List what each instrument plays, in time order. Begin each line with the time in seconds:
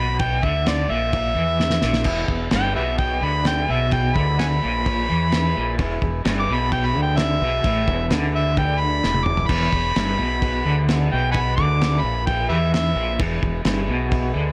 Already playing: fingered electric bass B1, overdriven electric guitar B2, harmonica B5
0.19 harmonica G5, kick, crash
0.43 fingered electric bass D2, overdriven electric guitar D3, harmonica E5, kick
0.66 harmonica D5, snare, crash
0.90 fingered electric bass A#1, overdriven electric guitar A#2, harmonica E5
1.13 kick, crash
1.35 fingered electric bass E2, overdriven electric guitar E3
1.60 snare
1.70 snare
1.82 fingered electric bass A#1, overdriven electric guitar A#2, snare
1.93 snare
2.04 fingered electric bass E1, overdriven electric guitar E2, transistor combo organ G#4 B4 E5, kick, crash
2.28 fingered electric bass E1, overdriven electric guitar E2, kick
2.50 fingered electric bass G1, overdriven electric guitar G2, transistor combo organ G#4 B4 E5, snare, crash
2.55 harmonica G5
2.75 fingered electric bass B1, overdriven electric guitar B2, harmonica G4 B4 E5
2.96 transistor combo organ G#4 B4 D#5, harmonica G5, kick, crash
3.22 fingered electric bass D2, overdriven electric guitar D3, harmonica B5
3.43 transistor combo organ G#4 B4 E5, harmonica G5, snare, crash
3.69 fingered electric bass B1, overdriven electric guitar B2, harmonica E5
3.91 transistor combo organ G#4, harmonica G5, kick, crash
3.95 transistor combo organ B4 E5
4.15 fingered electric bass D2, overdriven electric guitar D3, harmonica B5, kick
4.39 transistor combo organ G#4 B4 E5, harmonica F#5 G#5 B5, snare, crash
4.63 fingered electric bass A#1, overdriven electric guitar A#2
4.85 transistor combo organ G#4 B4 C#5, kick, crash
5.10 fingered electric bass E2, overdriven electric guitar E3
5.32 transistor combo organ G#4 B4, snare, crash
5.37 transistor combo organ E5
5.57 fingered electric bass A#1, overdriven electric guitar A#2
5.79 fingered electric bass E1, overdriven electric guitar E2, transistor combo organ G#4 B4 E5, kick, crash
6.02 fingered electric bass E1, overdriven electric guitar E2, kick
6.25 fingered electric bass G1, overdriven electric guitar G2, transistor combo organ B4 E5, snare, crash
6.29 transistor combo organ G#4
6.39 harmonica D6
6.49 fingered electric bass B1, overdriven electric guitar B2
6.54 harmonica B5
6.72 transistor combo organ G#4 B4 E5, harmonica G5, kick, crash
6.86 harmonica B5
6.96 fingered electric bass D2, overdriven electric guitar D3
7.02 harmonica G5
7.17 transistor combo organ G#4 B4 E5, harmonica E5, snare, crash
7.42 fingered electric bass B1, overdriven electric guitar B2
7.62 fingered electric bass A1, transistor combo organ G#4 B4 E5, kick, crash
7.66 overdriven electric guitar A2
7.88 fingered electric bass E1, overdriven electric guitar E2, kick
8.09 fingered electric bass D2, overdriven electric guitar D3, transistor combo organ G#4 B4 E5, snare, crash
8.35 harmonica E5
8.57 transistor combo organ G#4 B4 E5, harmonica G5, kick, crash
8.79 harmonica B5
9.04 fingered electric bass E1, overdriven electric guitar E2, transistor combo organ G#4 B4 E5, snare
9.14 high tom
9.24 harmonica D6, mid tom
9.37 floor tom
9.47 fingered electric bass E1, overdriven electric guitar E2, transistor combo organ G#4 B4, harmonica B5, kick, crash
9.51 transistor combo organ C#5
9.73 fingered electric bass E1, overdriven electric guitar E2, kick
9.94 fingered electric bass G1, overdriven electric guitar G2, transistor combo organ G#4 B4 E5, snare, crash
10.18 fingered electric bass B1, overdriven electric guitar B2
10.42 transistor combo organ G#4 B4 F#5, kick, crash
10.65 fingered electric bass D2, overdriven electric guitar D3
10.89 transistor combo organ G#4 B4 E5, snare, crash
11.12 fingered electric bass B1, overdriven electric guitar B2, harmonica G5
11.32 transistor combo organ G#4 B4 F#5, harmonica F#5 G#5 B5, kick, crash
11.56 fingered electric bass D2, overdriven electric guitar D3, harmonica D6, kick
11.80 transistor combo organ G#4 B4 E5, snare, crash
12.00 fingered electric bass A#1, harmonica B5
12.05 overdriven electric guitar A#2
12.26 transistor combo organ G#4 B4 E5, harmonica G5, kick, crash
12.49 fingered electric bass E2, overdriven electric guitar E3, harmonica G4 B4 E5
12.71 transistor combo organ G#4 B4 E5, harmonica E5, snare, crash
12.96 fingered electric bass A#1, overdriven electric guitar A#2
13.18 fingered electric bass E1, overdriven electric guitar E2, transistor combo organ G#4 B4 E5, kick, crash
13.42 fingered electric bass E1, overdriven electric guitar E2, kick
13.64 fingered electric bass G1, overdriven electric guitar G2, transistor combo organ G#4 B4 E5, snare, crash
13.88 fingered electric bass B1, overdriven electric guitar B2
14.08 transistor combo organ G#4 B4 E5, kick, crash
14.35 fingered electric bass D2, overdriven electric guitar D3